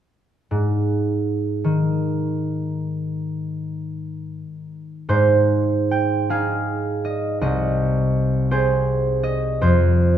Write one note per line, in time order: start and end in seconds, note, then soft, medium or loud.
0.51 4.41 G#2 medium
1.64 5.13 D#3 soft
5.09 7.44 G#2 soft
5.09 8.50 C5 medium
5.91 6.57 G5 medium
6.30 9.64 D#4 soft
6.30 8.50 G#4 soft
6.30 7.56 F5 medium
7.05 7.40 D#5 medium
7.41 9.65 C2 soft
7.41 9.22 D#5 medium
8.51 10.18 C4 soft
8.51 10.18 G#4 soft
8.51 9.60 C5 medium
9.23 9.65 D#5 medium
9.61 10.18 F2 medium
9.61 10.18 C5 medium